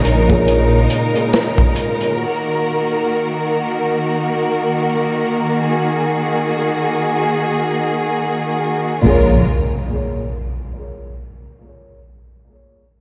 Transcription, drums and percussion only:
0, 0, Header, 1, 2, 480
1, 0, Start_track
1, 0, Key_signature, -5, "minor"
1, 0, Tempo, 500000
1, 12487, End_track
2, 0, Start_track
2, 0, Title_t, "Drums"
2, 47, Note_on_c, 9, 42, 74
2, 143, Note_off_c, 9, 42, 0
2, 285, Note_on_c, 9, 36, 94
2, 381, Note_off_c, 9, 36, 0
2, 461, Note_on_c, 9, 42, 80
2, 557, Note_off_c, 9, 42, 0
2, 866, Note_on_c, 9, 42, 69
2, 962, Note_off_c, 9, 42, 0
2, 1110, Note_on_c, 9, 42, 38
2, 1206, Note_off_c, 9, 42, 0
2, 1280, Note_on_c, 9, 42, 89
2, 1284, Note_on_c, 9, 38, 110
2, 1376, Note_off_c, 9, 42, 0
2, 1380, Note_off_c, 9, 38, 0
2, 1518, Note_on_c, 9, 36, 94
2, 1614, Note_off_c, 9, 36, 0
2, 1687, Note_on_c, 9, 42, 74
2, 1783, Note_off_c, 9, 42, 0
2, 1928, Note_on_c, 9, 42, 48
2, 2024, Note_off_c, 9, 42, 0
2, 12487, End_track
0, 0, End_of_file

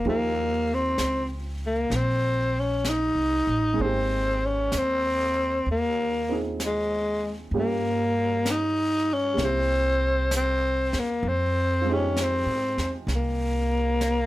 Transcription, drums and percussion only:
0, 0, Header, 1, 2, 480
1, 0, Start_track
1, 0, Key_signature, -4, "minor"
1, 0, Tempo, 930233
1, 27, Time_signature, 4, 2, 24, 8
1, 7359, End_track
2, 0, Start_track
2, 0, Title_t, "Drums"
2, 28, Note_on_c, 9, 25, 32
2, 506, Note_off_c, 9, 25, 0
2, 506, Note_on_c, 9, 25, 31
2, 506, Note_on_c, 9, 38, 40
2, 506, Note_on_c, 9, 44, 45
2, 558, Note_off_c, 9, 38, 0
2, 558, Note_off_c, 9, 44, 0
2, 987, Note_off_c, 9, 25, 0
2, 987, Note_on_c, 9, 25, 36
2, 987, Note_on_c, 9, 38, 29
2, 1038, Note_off_c, 9, 38, 0
2, 1468, Note_off_c, 9, 25, 0
2, 1468, Note_on_c, 9, 25, 36
2, 1468, Note_on_c, 9, 38, 40
2, 1468, Note_on_c, 9, 44, 42
2, 1520, Note_off_c, 9, 38, 0
2, 1520, Note_off_c, 9, 44, 0
2, 1948, Note_off_c, 9, 25, 0
2, 1948, Note_on_c, 9, 25, 36
2, 2435, Note_off_c, 9, 25, 0
2, 2435, Note_on_c, 9, 25, 36
2, 2435, Note_on_c, 9, 38, 40
2, 2435, Note_on_c, 9, 44, 48
2, 2486, Note_off_c, 9, 38, 0
2, 2486, Note_off_c, 9, 44, 0
2, 2917, Note_off_c, 9, 25, 0
2, 2917, Note_on_c, 9, 25, 32
2, 3404, Note_off_c, 9, 25, 0
2, 3404, Note_on_c, 9, 25, 36
2, 3404, Note_on_c, 9, 38, 42
2, 3404, Note_on_c, 9, 44, 48
2, 3456, Note_off_c, 9, 38, 0
2, 3456, Note_off_c, 9, 44, 0
2, 3884, Note_off_c, 9, 25, 0
2, 3884, Note_on_c, 9, 25, 35
2, 4363, Note_off_c, 9, 25, 0
2, 4363, Note_on_c, 9, 25, 41
2, 4363, Note_on_c, 9, 38, 43
2, 4363, Note_on_c, 9, 44, 48
2, 4415, Note_off_c, 9, 38, 0
2, 4415, Note_off_c, 9, 44, 0
2, 4840, Note_off_c, 9, 25, 0
2, 4840, Note_on_c, 9, 25, 30
2, 4840, Note_on_c, 9, 38, 28
2, 4892, Note_off_c, 9, 38, 0
2, 5320, Note_off_c, 9, 25, 0
2, 5320, Note_on_c, 9, 25, 37
2, 5320, Note_on_c, 9, 38, 39
2, 5320, Note_on_c, 9, 44, 50
2, 5372, Note_off_c, 9, 38, 0
2, 5372, Note_off_c, 9, 44, 0
2, 5640, Note_on_c, 9, 38, 25
2, 5691, Note_off_c, 9, 38, 0
2, 5797, Note_off_c, 9, 25, 0
2, 5797, Note_on_c, 9, 25, 30
2, 6277, Note_off_c, 9, 25, 0
2, 6277, Note_on_c, 9, 25, 30
2, 6277, Note_on_c, 9, 38, 41
2, 6277, Note_on_c, 9, 44, 45
2, 6329, Note_off_c, 9, 38, 0
2, 6329, Note_off_c, 9, 44, 0
2, 6595, Note_on_c, 9, 38, 26
2, 6647, Note_off_c, 9, 38, 0
2, 6751, Note_off_c, 9, 25, 0
2, 6751, Note_on_c, 9, 25, 37
2, 6751, Note_on_c, 9, 38, 28
2, 6802, Note_off_c, 9, 38, 0
2, 7229, Note_off_c, 9, 25, 0
2, 7229, Note_on_c, 9, 25, 30
2, 7229, Note_on_c, 9, 38, 41
2, 7229, Note_on_c, 9, 44, 43
2, 7280, Note_off_c, 9, 38, 0
2, 7280, Note_off_c, 9, 44, 0
2, 7359, Note_off_c, 9, 25, 0
2, 7359, End_track
0, 0, End_of_file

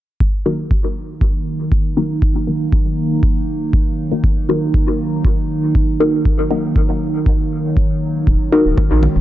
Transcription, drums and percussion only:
0, 0, Header, 1, 2, 480
1, 0, Start_track
1, 0, Key_signature, -6, "minor"
1, 0, Tempo, 504202
1, 195, Time_signature, 4, 2, 24, 8
1, 8766, End_track
2, 0, Start_track
2, 0, Title_t, "Drums"
2, 195, Note_on_c, 9, 36, 106
2, 290, Note_off_c, 9, 36, 0
2, 675, Note_on_c, 9, 36, 103
2, 770, Note_off_c, 9, 36, 0
2, 1155, Note_on_c, 9, 36, 109
2, 1250, Note_off_c, 9, 36, 0
2, 1634, Note_on_c, 9, 36, 105
2, 1730, Note_off_c, 9, 36, 0
2, 2114, Note_on_c, 9, 36, 115
2, 2210, Note_off_c, 9, 36, 0
2, 2594, Note_on_c, 9, 36, 116
2, 2689, Note_off_c, 9, 36, 0
2, 3074, Note_on_c, 9, 36, 113
2, 3169, Note_off_c, 9, 36, 0
2, 3554, Note_on_c, 9, 36, 110
2, 3649, Note_off_c, 9, 36, 0
2, 4034, Note_on_c, 9, 36, 110
2, 4129, Note_off_c, 9, 36, 0
2, 4514, Note_on_c, 9, 36, 114
2, 4609, Note_off_c, 9, 36, 0
2, 4994, Note_on_c, 9, 36, 114
2, 5089, Note_off_c, 9, 36, 0
2, 5474, Note_on_c, 9, 36, 110
2, 5569, Note_off_c, 9, 36, 0
2, 5954, Note_on_c, 9, 36, 113
2, 6049, Note_off_c, 9, 36, 0
2, 6434, Note_on_c, 9, 36, 109
2, 6529, Note_off_c, 9, 36, 0
2, 6914, Note_on_c, 9, 36, 121
2, 7009, Note_off_c, 9, 36, 0
2, 7394, Note_on_c, 9, 36, 104
2, 7489, Note_off_c, 9, 36, 0
2, 7874, Note_on_c, 9, 36, 111
2, 7969, Note_off_c, 9, 36, 0
2, 8354, Note_on_c, 9, 36, 112
2, 8355, Note_on_c, 9, 61, 41
2, 8449, Note_off_c, 9, 36, 0
2, 8450, Note_off_c, 9, 61, 0
2, 8595, Note_on_c, 9, 64, 73
2, 8690, Note_off_c, 9, 64, 0
2, 8766, End_track
0, 0, End_of_file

